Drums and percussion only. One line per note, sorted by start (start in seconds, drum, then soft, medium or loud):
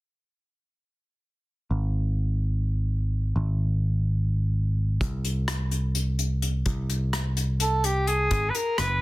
5.01 kick medium
5.01 closed hi-hat medium
5.25 closed hi-hat soft
5.48 cross-stick medium
5.48 closed hi-hat medium
5.71 closed hi-hat soft
5.95 closed hi-hat medium
6.19 closed hi-hat soft
6.42 closed hi-hat soft
6.66 kick medium
6.66 closed hi-hat medium
6.90 closed hi-hat soft
7.13 cross-stick medium
7.13 closed hi-hat medium
7.37 closed hi-hat medium
7.60 closed hi-hat medium
7.84 closed hi-hat soft
8.07 closed hi-hat soft
8.31 kick medium
8.31 closed hi-hat medium
8.55 closed hi-hat soft
8.78 cross-stick medium
8.78 closed hi-hat medium